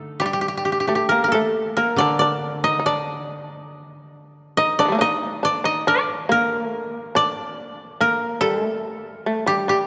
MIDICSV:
0, 0, Header, 1, 4, 480
1, 0, Start_track
1, 0, Tempo, 896861
1, 108, Time_signature, 4, 2, 24, 8
1, 1067, Tempo, 869565
1, 2027, Tempo, 851064
1, 5488, End_track
2, 0, Start_track
2, 0, Title_t, "Koto"
2, 0, Program_c, 0, 107
2, 106, Note_on_c, 0, 67, 61
2, 135, Note_off_c, 0, 67, 0
2, 137, Note_on_c, 0, 67, 45
2, 176, Note_off_c, 0, 67, 0
2, 178, Note_on_c, 0, 67, 48
2, 218, Note_off_c, 0, 67, 0
2, 221, Note_on_c, 0, 67, 40
2, 256, Note_off_c, 0, 67, 0
2, 258, Note_on_c, 0, 67, 42
2, 305, Note_off_c, 0, 67, 0
2, 307, Note_on_c, 0, 67, 38
2, 346, Note_off_c, 0, 67, 0
2, 348, Note_on_c, 0, 67, 44
2, 384, Note_off_c, 0, 67, 0
2, 386, Note_on_c, 0, 67, 38
2, 427, Note_off_c, 0, 67, 0
2, 429, Note_on_c, 0, 67, 46
2, 466, Note_off_c, 0, 67, 0
2, 468, Note_on_c, 0, 67, 42
2, 508, Note_off_c, 0, 67, 0
2, 510, Note_on_c, 0, 67, 48
2, 583, Note_on_c, 0, 70, 65
2, 661, Note_off_c, 0, 70, 0
2, 663, Note_on_c, 0, 70, 46
2, 706, Note_on_c, 0, 69, 64
2, 738, Note_off_c, 0, 70, 0
2, 945, Note_on_c, 0, 70, 64
2, 978, Note_off_c, 0, 69, 0
2, 1062, Note_on_c, 0, 74, 77
2, 1174, Note_off_c, 0, 74, 0
2, 1176, Note_on_c, 0, 74, 69
2, 1423, Note_on_c, 0, 75, 72
2, 1456, Note_off_c, 0, 74, 0
2, 1545, Note_on_c, 0, 74, 67
2, 1578, Note_off_c, 0, 75, 0
2, 1618, Note_off_c, 0, 67, 0
2, 1956, Note_off_c, 0, 70, 0
2, 2437, Note_off_c, 0, 74, 0
2, 2501, Note_on_c, 0, 75, 82
2, 2623, Note_on_c, 0, 74, 78
2, 2656, Note_off_c, 0, 75, 0
2, 2748, Note_on_c, 0, 75, 78
2, 2781, Note_off_c, 0, 74, 0
2, 2994, Note_on_c, 0, 74, 82
2, 3028, Note_off_c, 0, 75, 0
2, 3110, Note_on_c, 0, 75, 69
2, 3144, Note_off_c, 0, 74, 0
2, 3237, Note_on_c, 0, 74, 76
2, 3271, Note_off_c, 0, 75, 0
2, 3484, Note_on_c, 0, 70, 72
2, 3960, Note_off_c, 0, 74, 0
2, 3962, Note_on_c, 0, 74, 81
2, 4437, Note_off_c, 0, 70, 0
2, 4439, Note_on_c, 0, 70, 72
2, 4664, Note_on_c, 0, 69, 77
2, 4697, Note_off_c, 0, 70, 0
2, 4865, Note_off_c, 0, 74, 0
2, 5265, Note_on_c, 0, 67, 62
2, 5386, Note_off_c, 0, 67, 0
2, 5388, Note_on_c, 0, 67, 57
2, 5488, Note_off_c, 0, 67, 0
2, 5488, Note_off_c, 0, 69, 0
2, 5488, End_track
3, 0, Start_track
3, 0, Title_t, "Koto"
3, 0, Program_c, 1, 107
3, 0, Note_on_c, 1, 50, 45
3, 0, Note_on_c, 1, 57, 36
3, 0, Note_on_c, 1, 62, 33
3, 0, Note_on_c, 1, 63, 38
3, 0, Note_on_c, 1, 69, 34
3, 232, Note_off_c, 1, 57, 0
3, 348, Note_off_c, 1, 62, 0
3, 470, Note_off_c, 1, 63, 0
3, 586, Note_off_c, 1, 50, 0
3, 592, Note_off_c, 1, 69, 0
3, 1051, Note_on_c, 1, 50, 49
3, 2501, Note_off_c, 1, 50, 0
3, 5488, End_track
4, 0, Start_track
4, 0, Title_t, "Shamisen"
4, 0, Program_c, 2, 106
4, 115, Note_on_c, 2, 55, 52
4, 453, Note_off_c, 2, 55, 0
4, 474, Note_on_c, 2, 57, 51
4, 585, Note_off_c, 2, 57, 0
4, 598, Note_on_c, 2, 58, 53
4, 672, Note_off_c, 2, 58, 0
4, 687, Note_on_c, 2, 58, 42
4, 717, Note_off_c, 2, 58, 0
4, 720, Note_on_c, 2, 57, 51
4, 937, Note_off_c, 2, 57, 0
4, 949, Note_on_c, 2, 58, 55
4, 1059, Note_off_c, 2, 58, 0
4, 1073, Note_on_c, 2, 62, 63
4, 1183, Note_off_c, 2, 62, 0
4, 1189, Note_on_c, 2, 62, 61
4, 1414, Note_off_c, 2, 62, 0
4, 1423, Note_on_c, 2, 63, 67
4, 1503, Note_off_c, 2, 63, 0
4, 1509, Note_on_c, 2, 63, 51
4, 1544, Note_off_c, 2, 63, 0
4, 1546, Note_on_c, 2, 62, 60
4, 1886, Note_off_c, 2, 62, 0
4, 2507, Note_on_c, 2, 63, 62
4, 2621, Note_off_c, 2, 63, 0
4, 2628, Note_on_c, 2, 62, 72
4, 2640, Note_on_c, 2, 50, 30
4, 2657, Note_off_c, 2, 50, 0
4, 2660, Note_on_c, 2, 51, 31
4, 2676, Note_on_c, 2, 55, 40
4, 2695, Note_off_c, 2, 51, 0
4, 2697, Note_on_c, 2, 57, 41
4, 2710, Note_off_c, 2, 55, 0
4, 2713, Note_on_c, 2, 58, 48
4, 2727, Note_off_c, 2, 62, 0
4, 2734, Note_on_c, 2, 62, 50
4, 2750, Note_off_c, 2, 62, 0
4, 2752, Note_on_c, 2, 63, 74
4, 2772, Note_off_c, 2, 57, 0
4, 2790, Note_off_c, 2, 58, 0
4, 2974, Note_off_c, 2, 63, 0
4, 2984, Note_on_c, 2, 62, 62
4, 3098, Note_off_c, 2, 62, 0
4, 3104, Note_on_c, 2, 63, 63
4, 3218, Note_off_c, 2, 63, 0
4, 3233, Note_on_c, 2, 62, 72
4, 3456, Note_off_c, 2, 62, 0
4, 3470, Note_on_c, 2, 58, 64
4, 3668, Note_off_c, 2, 58, 0
4, 3668, Note_on_c, 2, 57, 64
4, 3812, Note_off_c, 2, 57, 0
4, 3955, Note_on_c, 2, 62, 68
4, 4409, Note_off_c, 2, 62, 0
4, 4437, Note_on_c, 2, 58, 59
4, 4653, Note_off_c, 2, 58, 0
4, 4665, Note_on_c, 2, 55, 67
4, 4800, Note_off_c, 2, 55, 0
4, 4800, Note_on_c, 2, 57, 67
4, 5120, Note_off_c, 2, 57, 0
4, 5146, Note_on_c, 2, 57, 60
4, 5257, Note_off_c, 2, 57, 0
4, 5259, Note_on_c, 2, 55, 54
4, 5375, Note_off_c, 2, 55, 0
4, 5382, Note_on_c, 2, 55, 51
4, 5488, Note_off_c, 2, 55, 0
4, 5488, End_track
0, 0, End_of_file